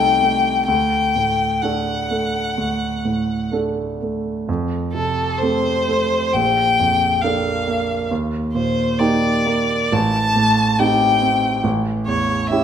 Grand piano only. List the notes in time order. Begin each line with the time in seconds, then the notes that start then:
Already playing: C2 C3 A3 D#4 A4
0.23 A3
0.68 D2
1.16 A2
1.63 A3 D4 A4
2.11 A3
2.58 D2
3.05 A2
3.52 A3 D4 A4
4.02 A3
4.49 F2
4.95 C3
5.41 A3 C4 A4
5.88 A3
6.34 A#1
6.80 F2
7.24 A#3 D4 A4
7.67 A#3
8.11 D#2
8.55 A#2
8.99 A#3 D#4 G4
9.46 A#3
9.92 A1
10.36 A2
10.79 C4 D#4 G4
11.21 C4
11.64 A1
12.07 E2
12.51 C#4 E4 G4